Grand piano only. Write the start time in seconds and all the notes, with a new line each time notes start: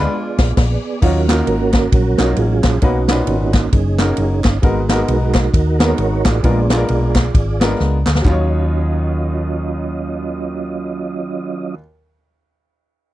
Already playing: G#3 B3 D4 F4 B4
1.02 D#3 A#3 D#4 F4 F#4 C#5
1.28 A#3 D#4 F4 F#4 A#4
2.18 A#3 D#4 F4 F#4 C#5
2.82 B2 A#3 C#4 D#4 F#4 B4
3.08 A#2 C#4 D#4 F#4 B4
3.98 A#3 C#4 D#4 F#4 A#4
4.62 G#2 G#3 B3 D#4 F#4 A#4
4.89 G#3 A#3 D#4 F#4 A#4
4.95 B3
5.79 G#3 B3 D#4 F#4 A#4
6.43 A#2 G#3 B3 D4 F4 A#4
6.70 G#3 B3 D4 F4 A4
6.77 A#4
7.60 G#3 B3 C#4 F4 A#4
7.67 D4
8.22 D#2 F#3 D#4
8.27 F4 C#5